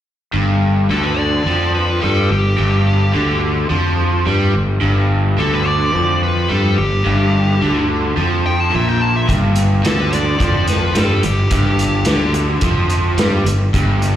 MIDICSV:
0, 0, Header, 1, 5, 480
1, 0, Start_track
1, 0, Tempo, 558659
1, 296, Time_signature, 4, 2, 24, 8
1, 12169, End_track
2, 0, Start_track
2, 0, Title_t, "Lead electric guitar"
2, 0, Program_c, 0, 29
2, 780, Note_on_c, 0, 69, 80
2, 888, Note_on_c, 0, 71, 71
2, 896, Note_off_c, 0, 69, 0
2, 1016, Note_off_c, 0, 71, 0
2, 1016, Note_on_c, 0, 74, 62
2, 1486, Note_off_c, 0, 74, 0
2, 1498, Note_on_c, 0, 71, 68
2, 1734, Note_off_c, 0, 71, 0
2, 1744, Note_on_c, 0, 69, 64
2, 1978, Note_off_c, 0, 69, 0
2, 1990, Note_on_c, 0, 67, 83
2, 2922, Note_off_c, 0, 67, 0
2, 4639, Note_on_c, 0, 69, 77
2, 4756, Note_off_c, 0, 69, 0
2, 4756, Note_on_c, 0, 71, 72
2, 4873, Note_off_c, 0, 71, 0
2, 4873, Note_on_c, 0, 74, 75
2, 5338, Note_off_c, 0, 74, 0
2, 5353, Note_on_c, 0, 71, 67
2, 5585, Note_off_c, 0, 71, 0
2, 5594, Note_on_c, 0, 69, 66
2, 5819, Note_off_c, 0, 69, 0
2, 5822, Note_on_c, 0, 67, 81
2, 6756, Note_off_c, 0, 67, 0
2, 7271, Note_on_c, 0, 79, 71
2, 7386, Note_off_c, 0, 79, 0
2, 7391, Note_on_c, 0, 81, 88
2, 7506, Note_off_c, 0, 81, 0
2, 7519, Note_on_c, 0, 76, 65
2, 7635, Note_off_c, 0, 76, 0
2, 7635, Note_on_c, 0, 79, 77
2, 7746, Note_off_c, 0, 79, 0
2, 7746, Note_on_c, 0, 81, 78
2, 7863, Note_off_c, 0, 81, 0
2, 7873, Note_on_c, 0, 76, 75
2, 7986, Note_off_c, 0, 76, 0
2, 8472, Note_on_c, 0, 69, 79
2, 8584, Note_off_c, 0, 69, 0
2, 8599, Note_on_c, 0, 71, 70
2, 8710, Note_off_c, 0, 71, 0
2, 8710, Note_on_c, 0, 74, 66
2, 9171, Note_off_c, 0, 74, 0
2, 9179, Note_on_c, 0, 71, 65
2, 9412, Note_off_c, 0, 71, 0
2, 9439, Note_on_c, 0, 69, 67
2, 9660, Note_off_c, 0, 69, 0
2, 9663, Note_on_c, 0, 67, 85
2, 10588, Note_off_c, 0, 67, 0
2, 12169, End_track
3, 0, Start_track
3, 0, Title_t, "Overdriven electric guitar"
3, 0, Program_c, 1, 29
3, 284, Note_on_c, 1, 43, 98
3, 765, Note_off_c, 1, 43, 0
3, 775, Note_on_c, 1, 50, 89
3, 1252, Note_off_c, 1, 50, 0
3, 1259, Note_on_c, 1, 53, 90
3, 1730, Note_on_c, 1, 55, 90
3, 1735, Note_off_c, 1, 53, 0
3, 1971, Note_off_c, 1, 55, 0
3, 1984, Note_on_c, 1, 43, 60
3, 2177, Note_off_c, 1, 43, 0
3, 2214, Note_on_c, 1, 43, 99
3, 2694, Note_off_c, 1, 43, 0
3, 2694, Note_on_c, 1, 50, 100
3, 3173, Note_off_c, 1, 50, 0
3, 3176, Note_on_c, 1, 53, 91
3, 3657, Note_off_c, 1, 53, 0
3, 3665, Note_on_c, 1, 55, 96
3, 3901, Note_off_c, 1, 55, 0
3, 3901, Note_on_c, 1, 43, 63
3, 4098, Note_off_c, 1, 43, 0
3, 4135, Note_on_c, 1, 43, 95
3, 4616, Note_off_c, 1, 43, 0
3, 4621, Note_on_c, 1, 50, 92
3, 5106, Note_off_c, 1, 50, 0
3, 5106, Note_on_c, 1, 53, 94
3, 5581, Note_off_c, 1, 53, 0
3, 5581, Note_on_c, 1, 55, 90
3, 5819, Note_off_c, 1, 55, 0
3, 5824, Note_on_c, 1, 43, 63
3, 6019, Note_off_c, 1, 43, 0
3, 6061, Note_on_c, 1, 43, 95
3, 6538, Note_off_c, 1, 43, 0
3, 6542, Note_on_c, 1, 50, 98
3, 7014, Note_off_c, 1, 50, 0
3, 7017, Note_on_c, 1, 53, 87
3, 7482, Note_off_c, 1, 53, 0
3, 7486, Note_on_c, 1, 46, 95
3, 7968, Note_off_c, 1, 46, 0
3, 7970, Note_on_c, 1, 43, 93
3, 8449, Note_off_c, 1, 43, 0
3, 8449, Note_on_c, 1, 50, 88
3, 8927, Note_off_c, 1, 50, 0
3, 8930, Note_on_c, 1, 53, 91
3, 9402, Note_on_c, 1, 55, 92
3, 9407, Note_off_c, 1, 53, 0
3, 9643, Note_off_c, 1, 55, 0
3, 9651, Note_on_c, 1, 43, 63
3, 9846, Note_off_c, 1, 43, 0
3, 9891, Note_on_c, 1, 43, 99
3, 10365, Note_off_c, 1, 43, 0
3, 10371, Note_on_c, 1, 50, 94
3, 10844, Note_off_c, 1, 50, 0
3, 10851, Note_on_c, 1, 53, 98
3, 11323, Note_off_c, 1, 53, 0
3, 11324, Note_on_c, 1, 55, 92
3, 11559, Note_off_c, 1, 55, 0
3, 11560, Note_on_c, 1, 43, 64
3, 11756, Note_off_c, 1, 43, 0
3, 11809, Note_on_c, 1, 43, 98
3, 12169, Note_off_c, 1, 43, 0
3, 12169, End_track
4, 0, Start_track
4, 0, Title_t, "Fingered electric bass"
4, 0, Program_c, 2, 33
4, 292, Note_on_c, 2, 31, 81
4, 743, Note_off_c, 2, 31, 0
4, 770, Note_on_c, 2, 38, 82
4, 1223, Note_off_c, 2, 38, 0
4, 1254, Note_on_c, 2, 41, 82
4, 1706, Note_off_c, 2, 41, 0
4, 1753, Note_on_c, 2, 43, 82
4, 1973, Note_off_c, 2, 43, 0
4, 1979, Note_on_c, 2, 31, 69
4, 2206, Note_off_c, 2, 31, 0
4, 2232, Note_on_c, 2, 31, 82
4, 2677, Note_off_c, 2, 31, 0
4, 2708, Note_on_c, 2, 38, 75
4, 3156, Note_off_c, 2, 38, 0
4, 3187, Note_on_c, 2, 41, 74
4, 3636, Note_off_c, 2, 41, 0
4, 3664, Note_on_c, 2, 43, 89
4, 3890, Note_off_c, 2, 43, 0
4, 3907, Note_on_c, 2, 31, 67
4, 4132, Note_off_c, 2, 31, 0
4, 4145, Note_on_c, 2, 31, 86
4, 4594, Note_off_c, 2, 31, 0
4, 4620, Note_on_c, 2, 38, 80
4, 5072, Note_off_c, 2, 38, 0
4, 5117, Note_on_c, 2, 41, 83
4, 5561, Note_off_c, 2, 41, 0
4, 5597, Note_on_c, 2, 43, 84
4, 5817, Note_off_c, 2, 43, 0
4, 5831, Note_on_c, 2, 31, 75
4, 6054, Note_off_c, 2, 31, 0
4, 6069, Note_on_c, 2, 31, 90
4, 6516, Note_off_c, 2, 31, 0
4, 6544, Note_on_c, 2, 38, 79
4, 6992, Note_off_c, 2, 38, 0
4, 7023, Note_on_c, 2, 41, 80
4, 7471, Note_off_c, 2, 41, 0
4, 7515, Note_on_c, 2, 34, 91
4, 7956, Note_off_c, 2, 34, 0
4, 7978, Note_on_c, 2, 31, 87
4, 8426, Note_off_c, 2, 31, 0
4, 8462, Note_on_c, 2, 38, 83
4, 8908, Note_off_c, 2, 38, 0
4, 8936, Note_on_c, 2, 41, 76
4, 9384, Note_off_c, 2, 41, 0
4, 9408, Note_on_c, 2, 43, 86
4, 9636, Note_off_c, 2, 43, 0
4, 9657, Note_on_c, 2, 31, 77
4, 9880, Note_off_c, 2, 31, 0
4, 9888, Note_on_c, 2, 31, 86
4, 10337, Note_off_c, 2, 31, 0
4, 10373, Note_on_c, 2, 38, 82
4, 10819, Note_off_c, 2, 38, 0
4, 10844, Note_on_c, 2, 41, 78
4, 11293, Note_off_c, 2, 41, 0
4, 11320, Note_on_c, 2, 43, 87
4, 11545, Note_off_c, 2, 43, 0
4, 11550, Note_on_c, 2, 31, 72
4, 11782, Note_off_c, 2, 31, 0
4, 11804, Note_on_c, 2, 31, 84
4, 12169, Note_off_c, 2, 31, 0
4, 12169, End_track
5, 0, Start_track
5, 0, Title_t, "Drums"
5, 7981, Note_on_c, 9, 36, 98
5, 7984, Note_on_c, 9, 42, 76
5, 8067, Note_off_c, 9, 36, 0
5, 8070, Note_off_c, 9, 42, 0
5, 8210, Note_on_c, 9, 42, 50
5, 8296, Note_off_c, 9, 42, 0
5, 8460, Note_on_c, 9, 42, 74
5, 8472, Note_on_c, 9, 38, 105
5, 8546, Note_off_c, 9, 42, 0
5, 8558, Note_off_c, 9, 38, 0
5, 8701, Note_on_c, 9, 42, 50
5, 8787, Note_off_c, 9, 42, 0
5, 8938, Note_on_c, 9, 36, 94
5, 8940, Note_on_c, 9, 42, 69
5, 9024, Note_off_c, 9, 36, 0
5, 9026, Note_off_c, 9, 42, 0
5, 9172, Note_on_c, 9, 42, 53
5, 9184, Note_on_c, 9, 38, 28
5, 9258, Note_off_c, 9, 42, 0
5, 9270, Note_off_c, 9, 38, 0
5, 9410, Note_on_c, 9, 42, 78
5, 9422, Note_on_c, 9, 38, 99
5, 9496, Note_off_c, 9, 42, 0
5, 9508, Note_off_c, 9, 38, 0
5, 9650, Note_on_c, 9, 42, 58
5, 9736, Note_off_c, 9, 42, 0
5, 9887, Note_on_c, 9, 42, 84
5, 9893, Note_on_c, 9, 36, 96
5, 9973, Note_off_c, 9, 42, 0
5, 9979, Note_off_c, 9, 36, 0
5, 10129, Note_on_c, 9, 42, 56
5, 10215, Note_off_c, 9, 42, 0
5, 10353, Note_on_c, 9, 42, 86
5, 10365, Note_on_c, 9, 38, 101
5, 10439, Note_off_c, 9, 42, 0
5, 10451, Note_off_c, 9, 38, 0
5, 10602, Note_on_c, 9, 42, 53
5, 10688, Note_off_c, 9, 42, 0
5, 10836, Note_on_c, 9, 42, 79
5, 10844, Note_on_c, 9, 36, 91
5, 10922, Note_off_c, 9, 42, 0
5, 10930, Note_off_c, 9, 36, 0
5, 11081, Note_on_c, 9, 42, 55
5, 11167, Note_off_c, 9, 42, 0
5, 11323, Note_on_c, 9, 42, 78
5, 11335, Note_on_c, 9, 38, 104
5, 11409, Note_off_c, 9, 42, 0
5, 11421, Note_off_c, 9, 38, 0
5, 11568, Note_on_c, 9, 42, 55
5, 11654, Note_off_c, 9, 42, 0
5, 11805, Note_on_c, 9, 42, 76
5, 11806, Note_on_c, 9, 36, 97
5, 11891, Note_off_c, 9, 42, 0
5, 11892, Note_off_c, 9, 36, 0
5, 12047, Note_on_c, 9, 42, 49
5, 12133, Note_off_c, 9, 42, 0
5, 12169, End_track
0, 0, End_of_file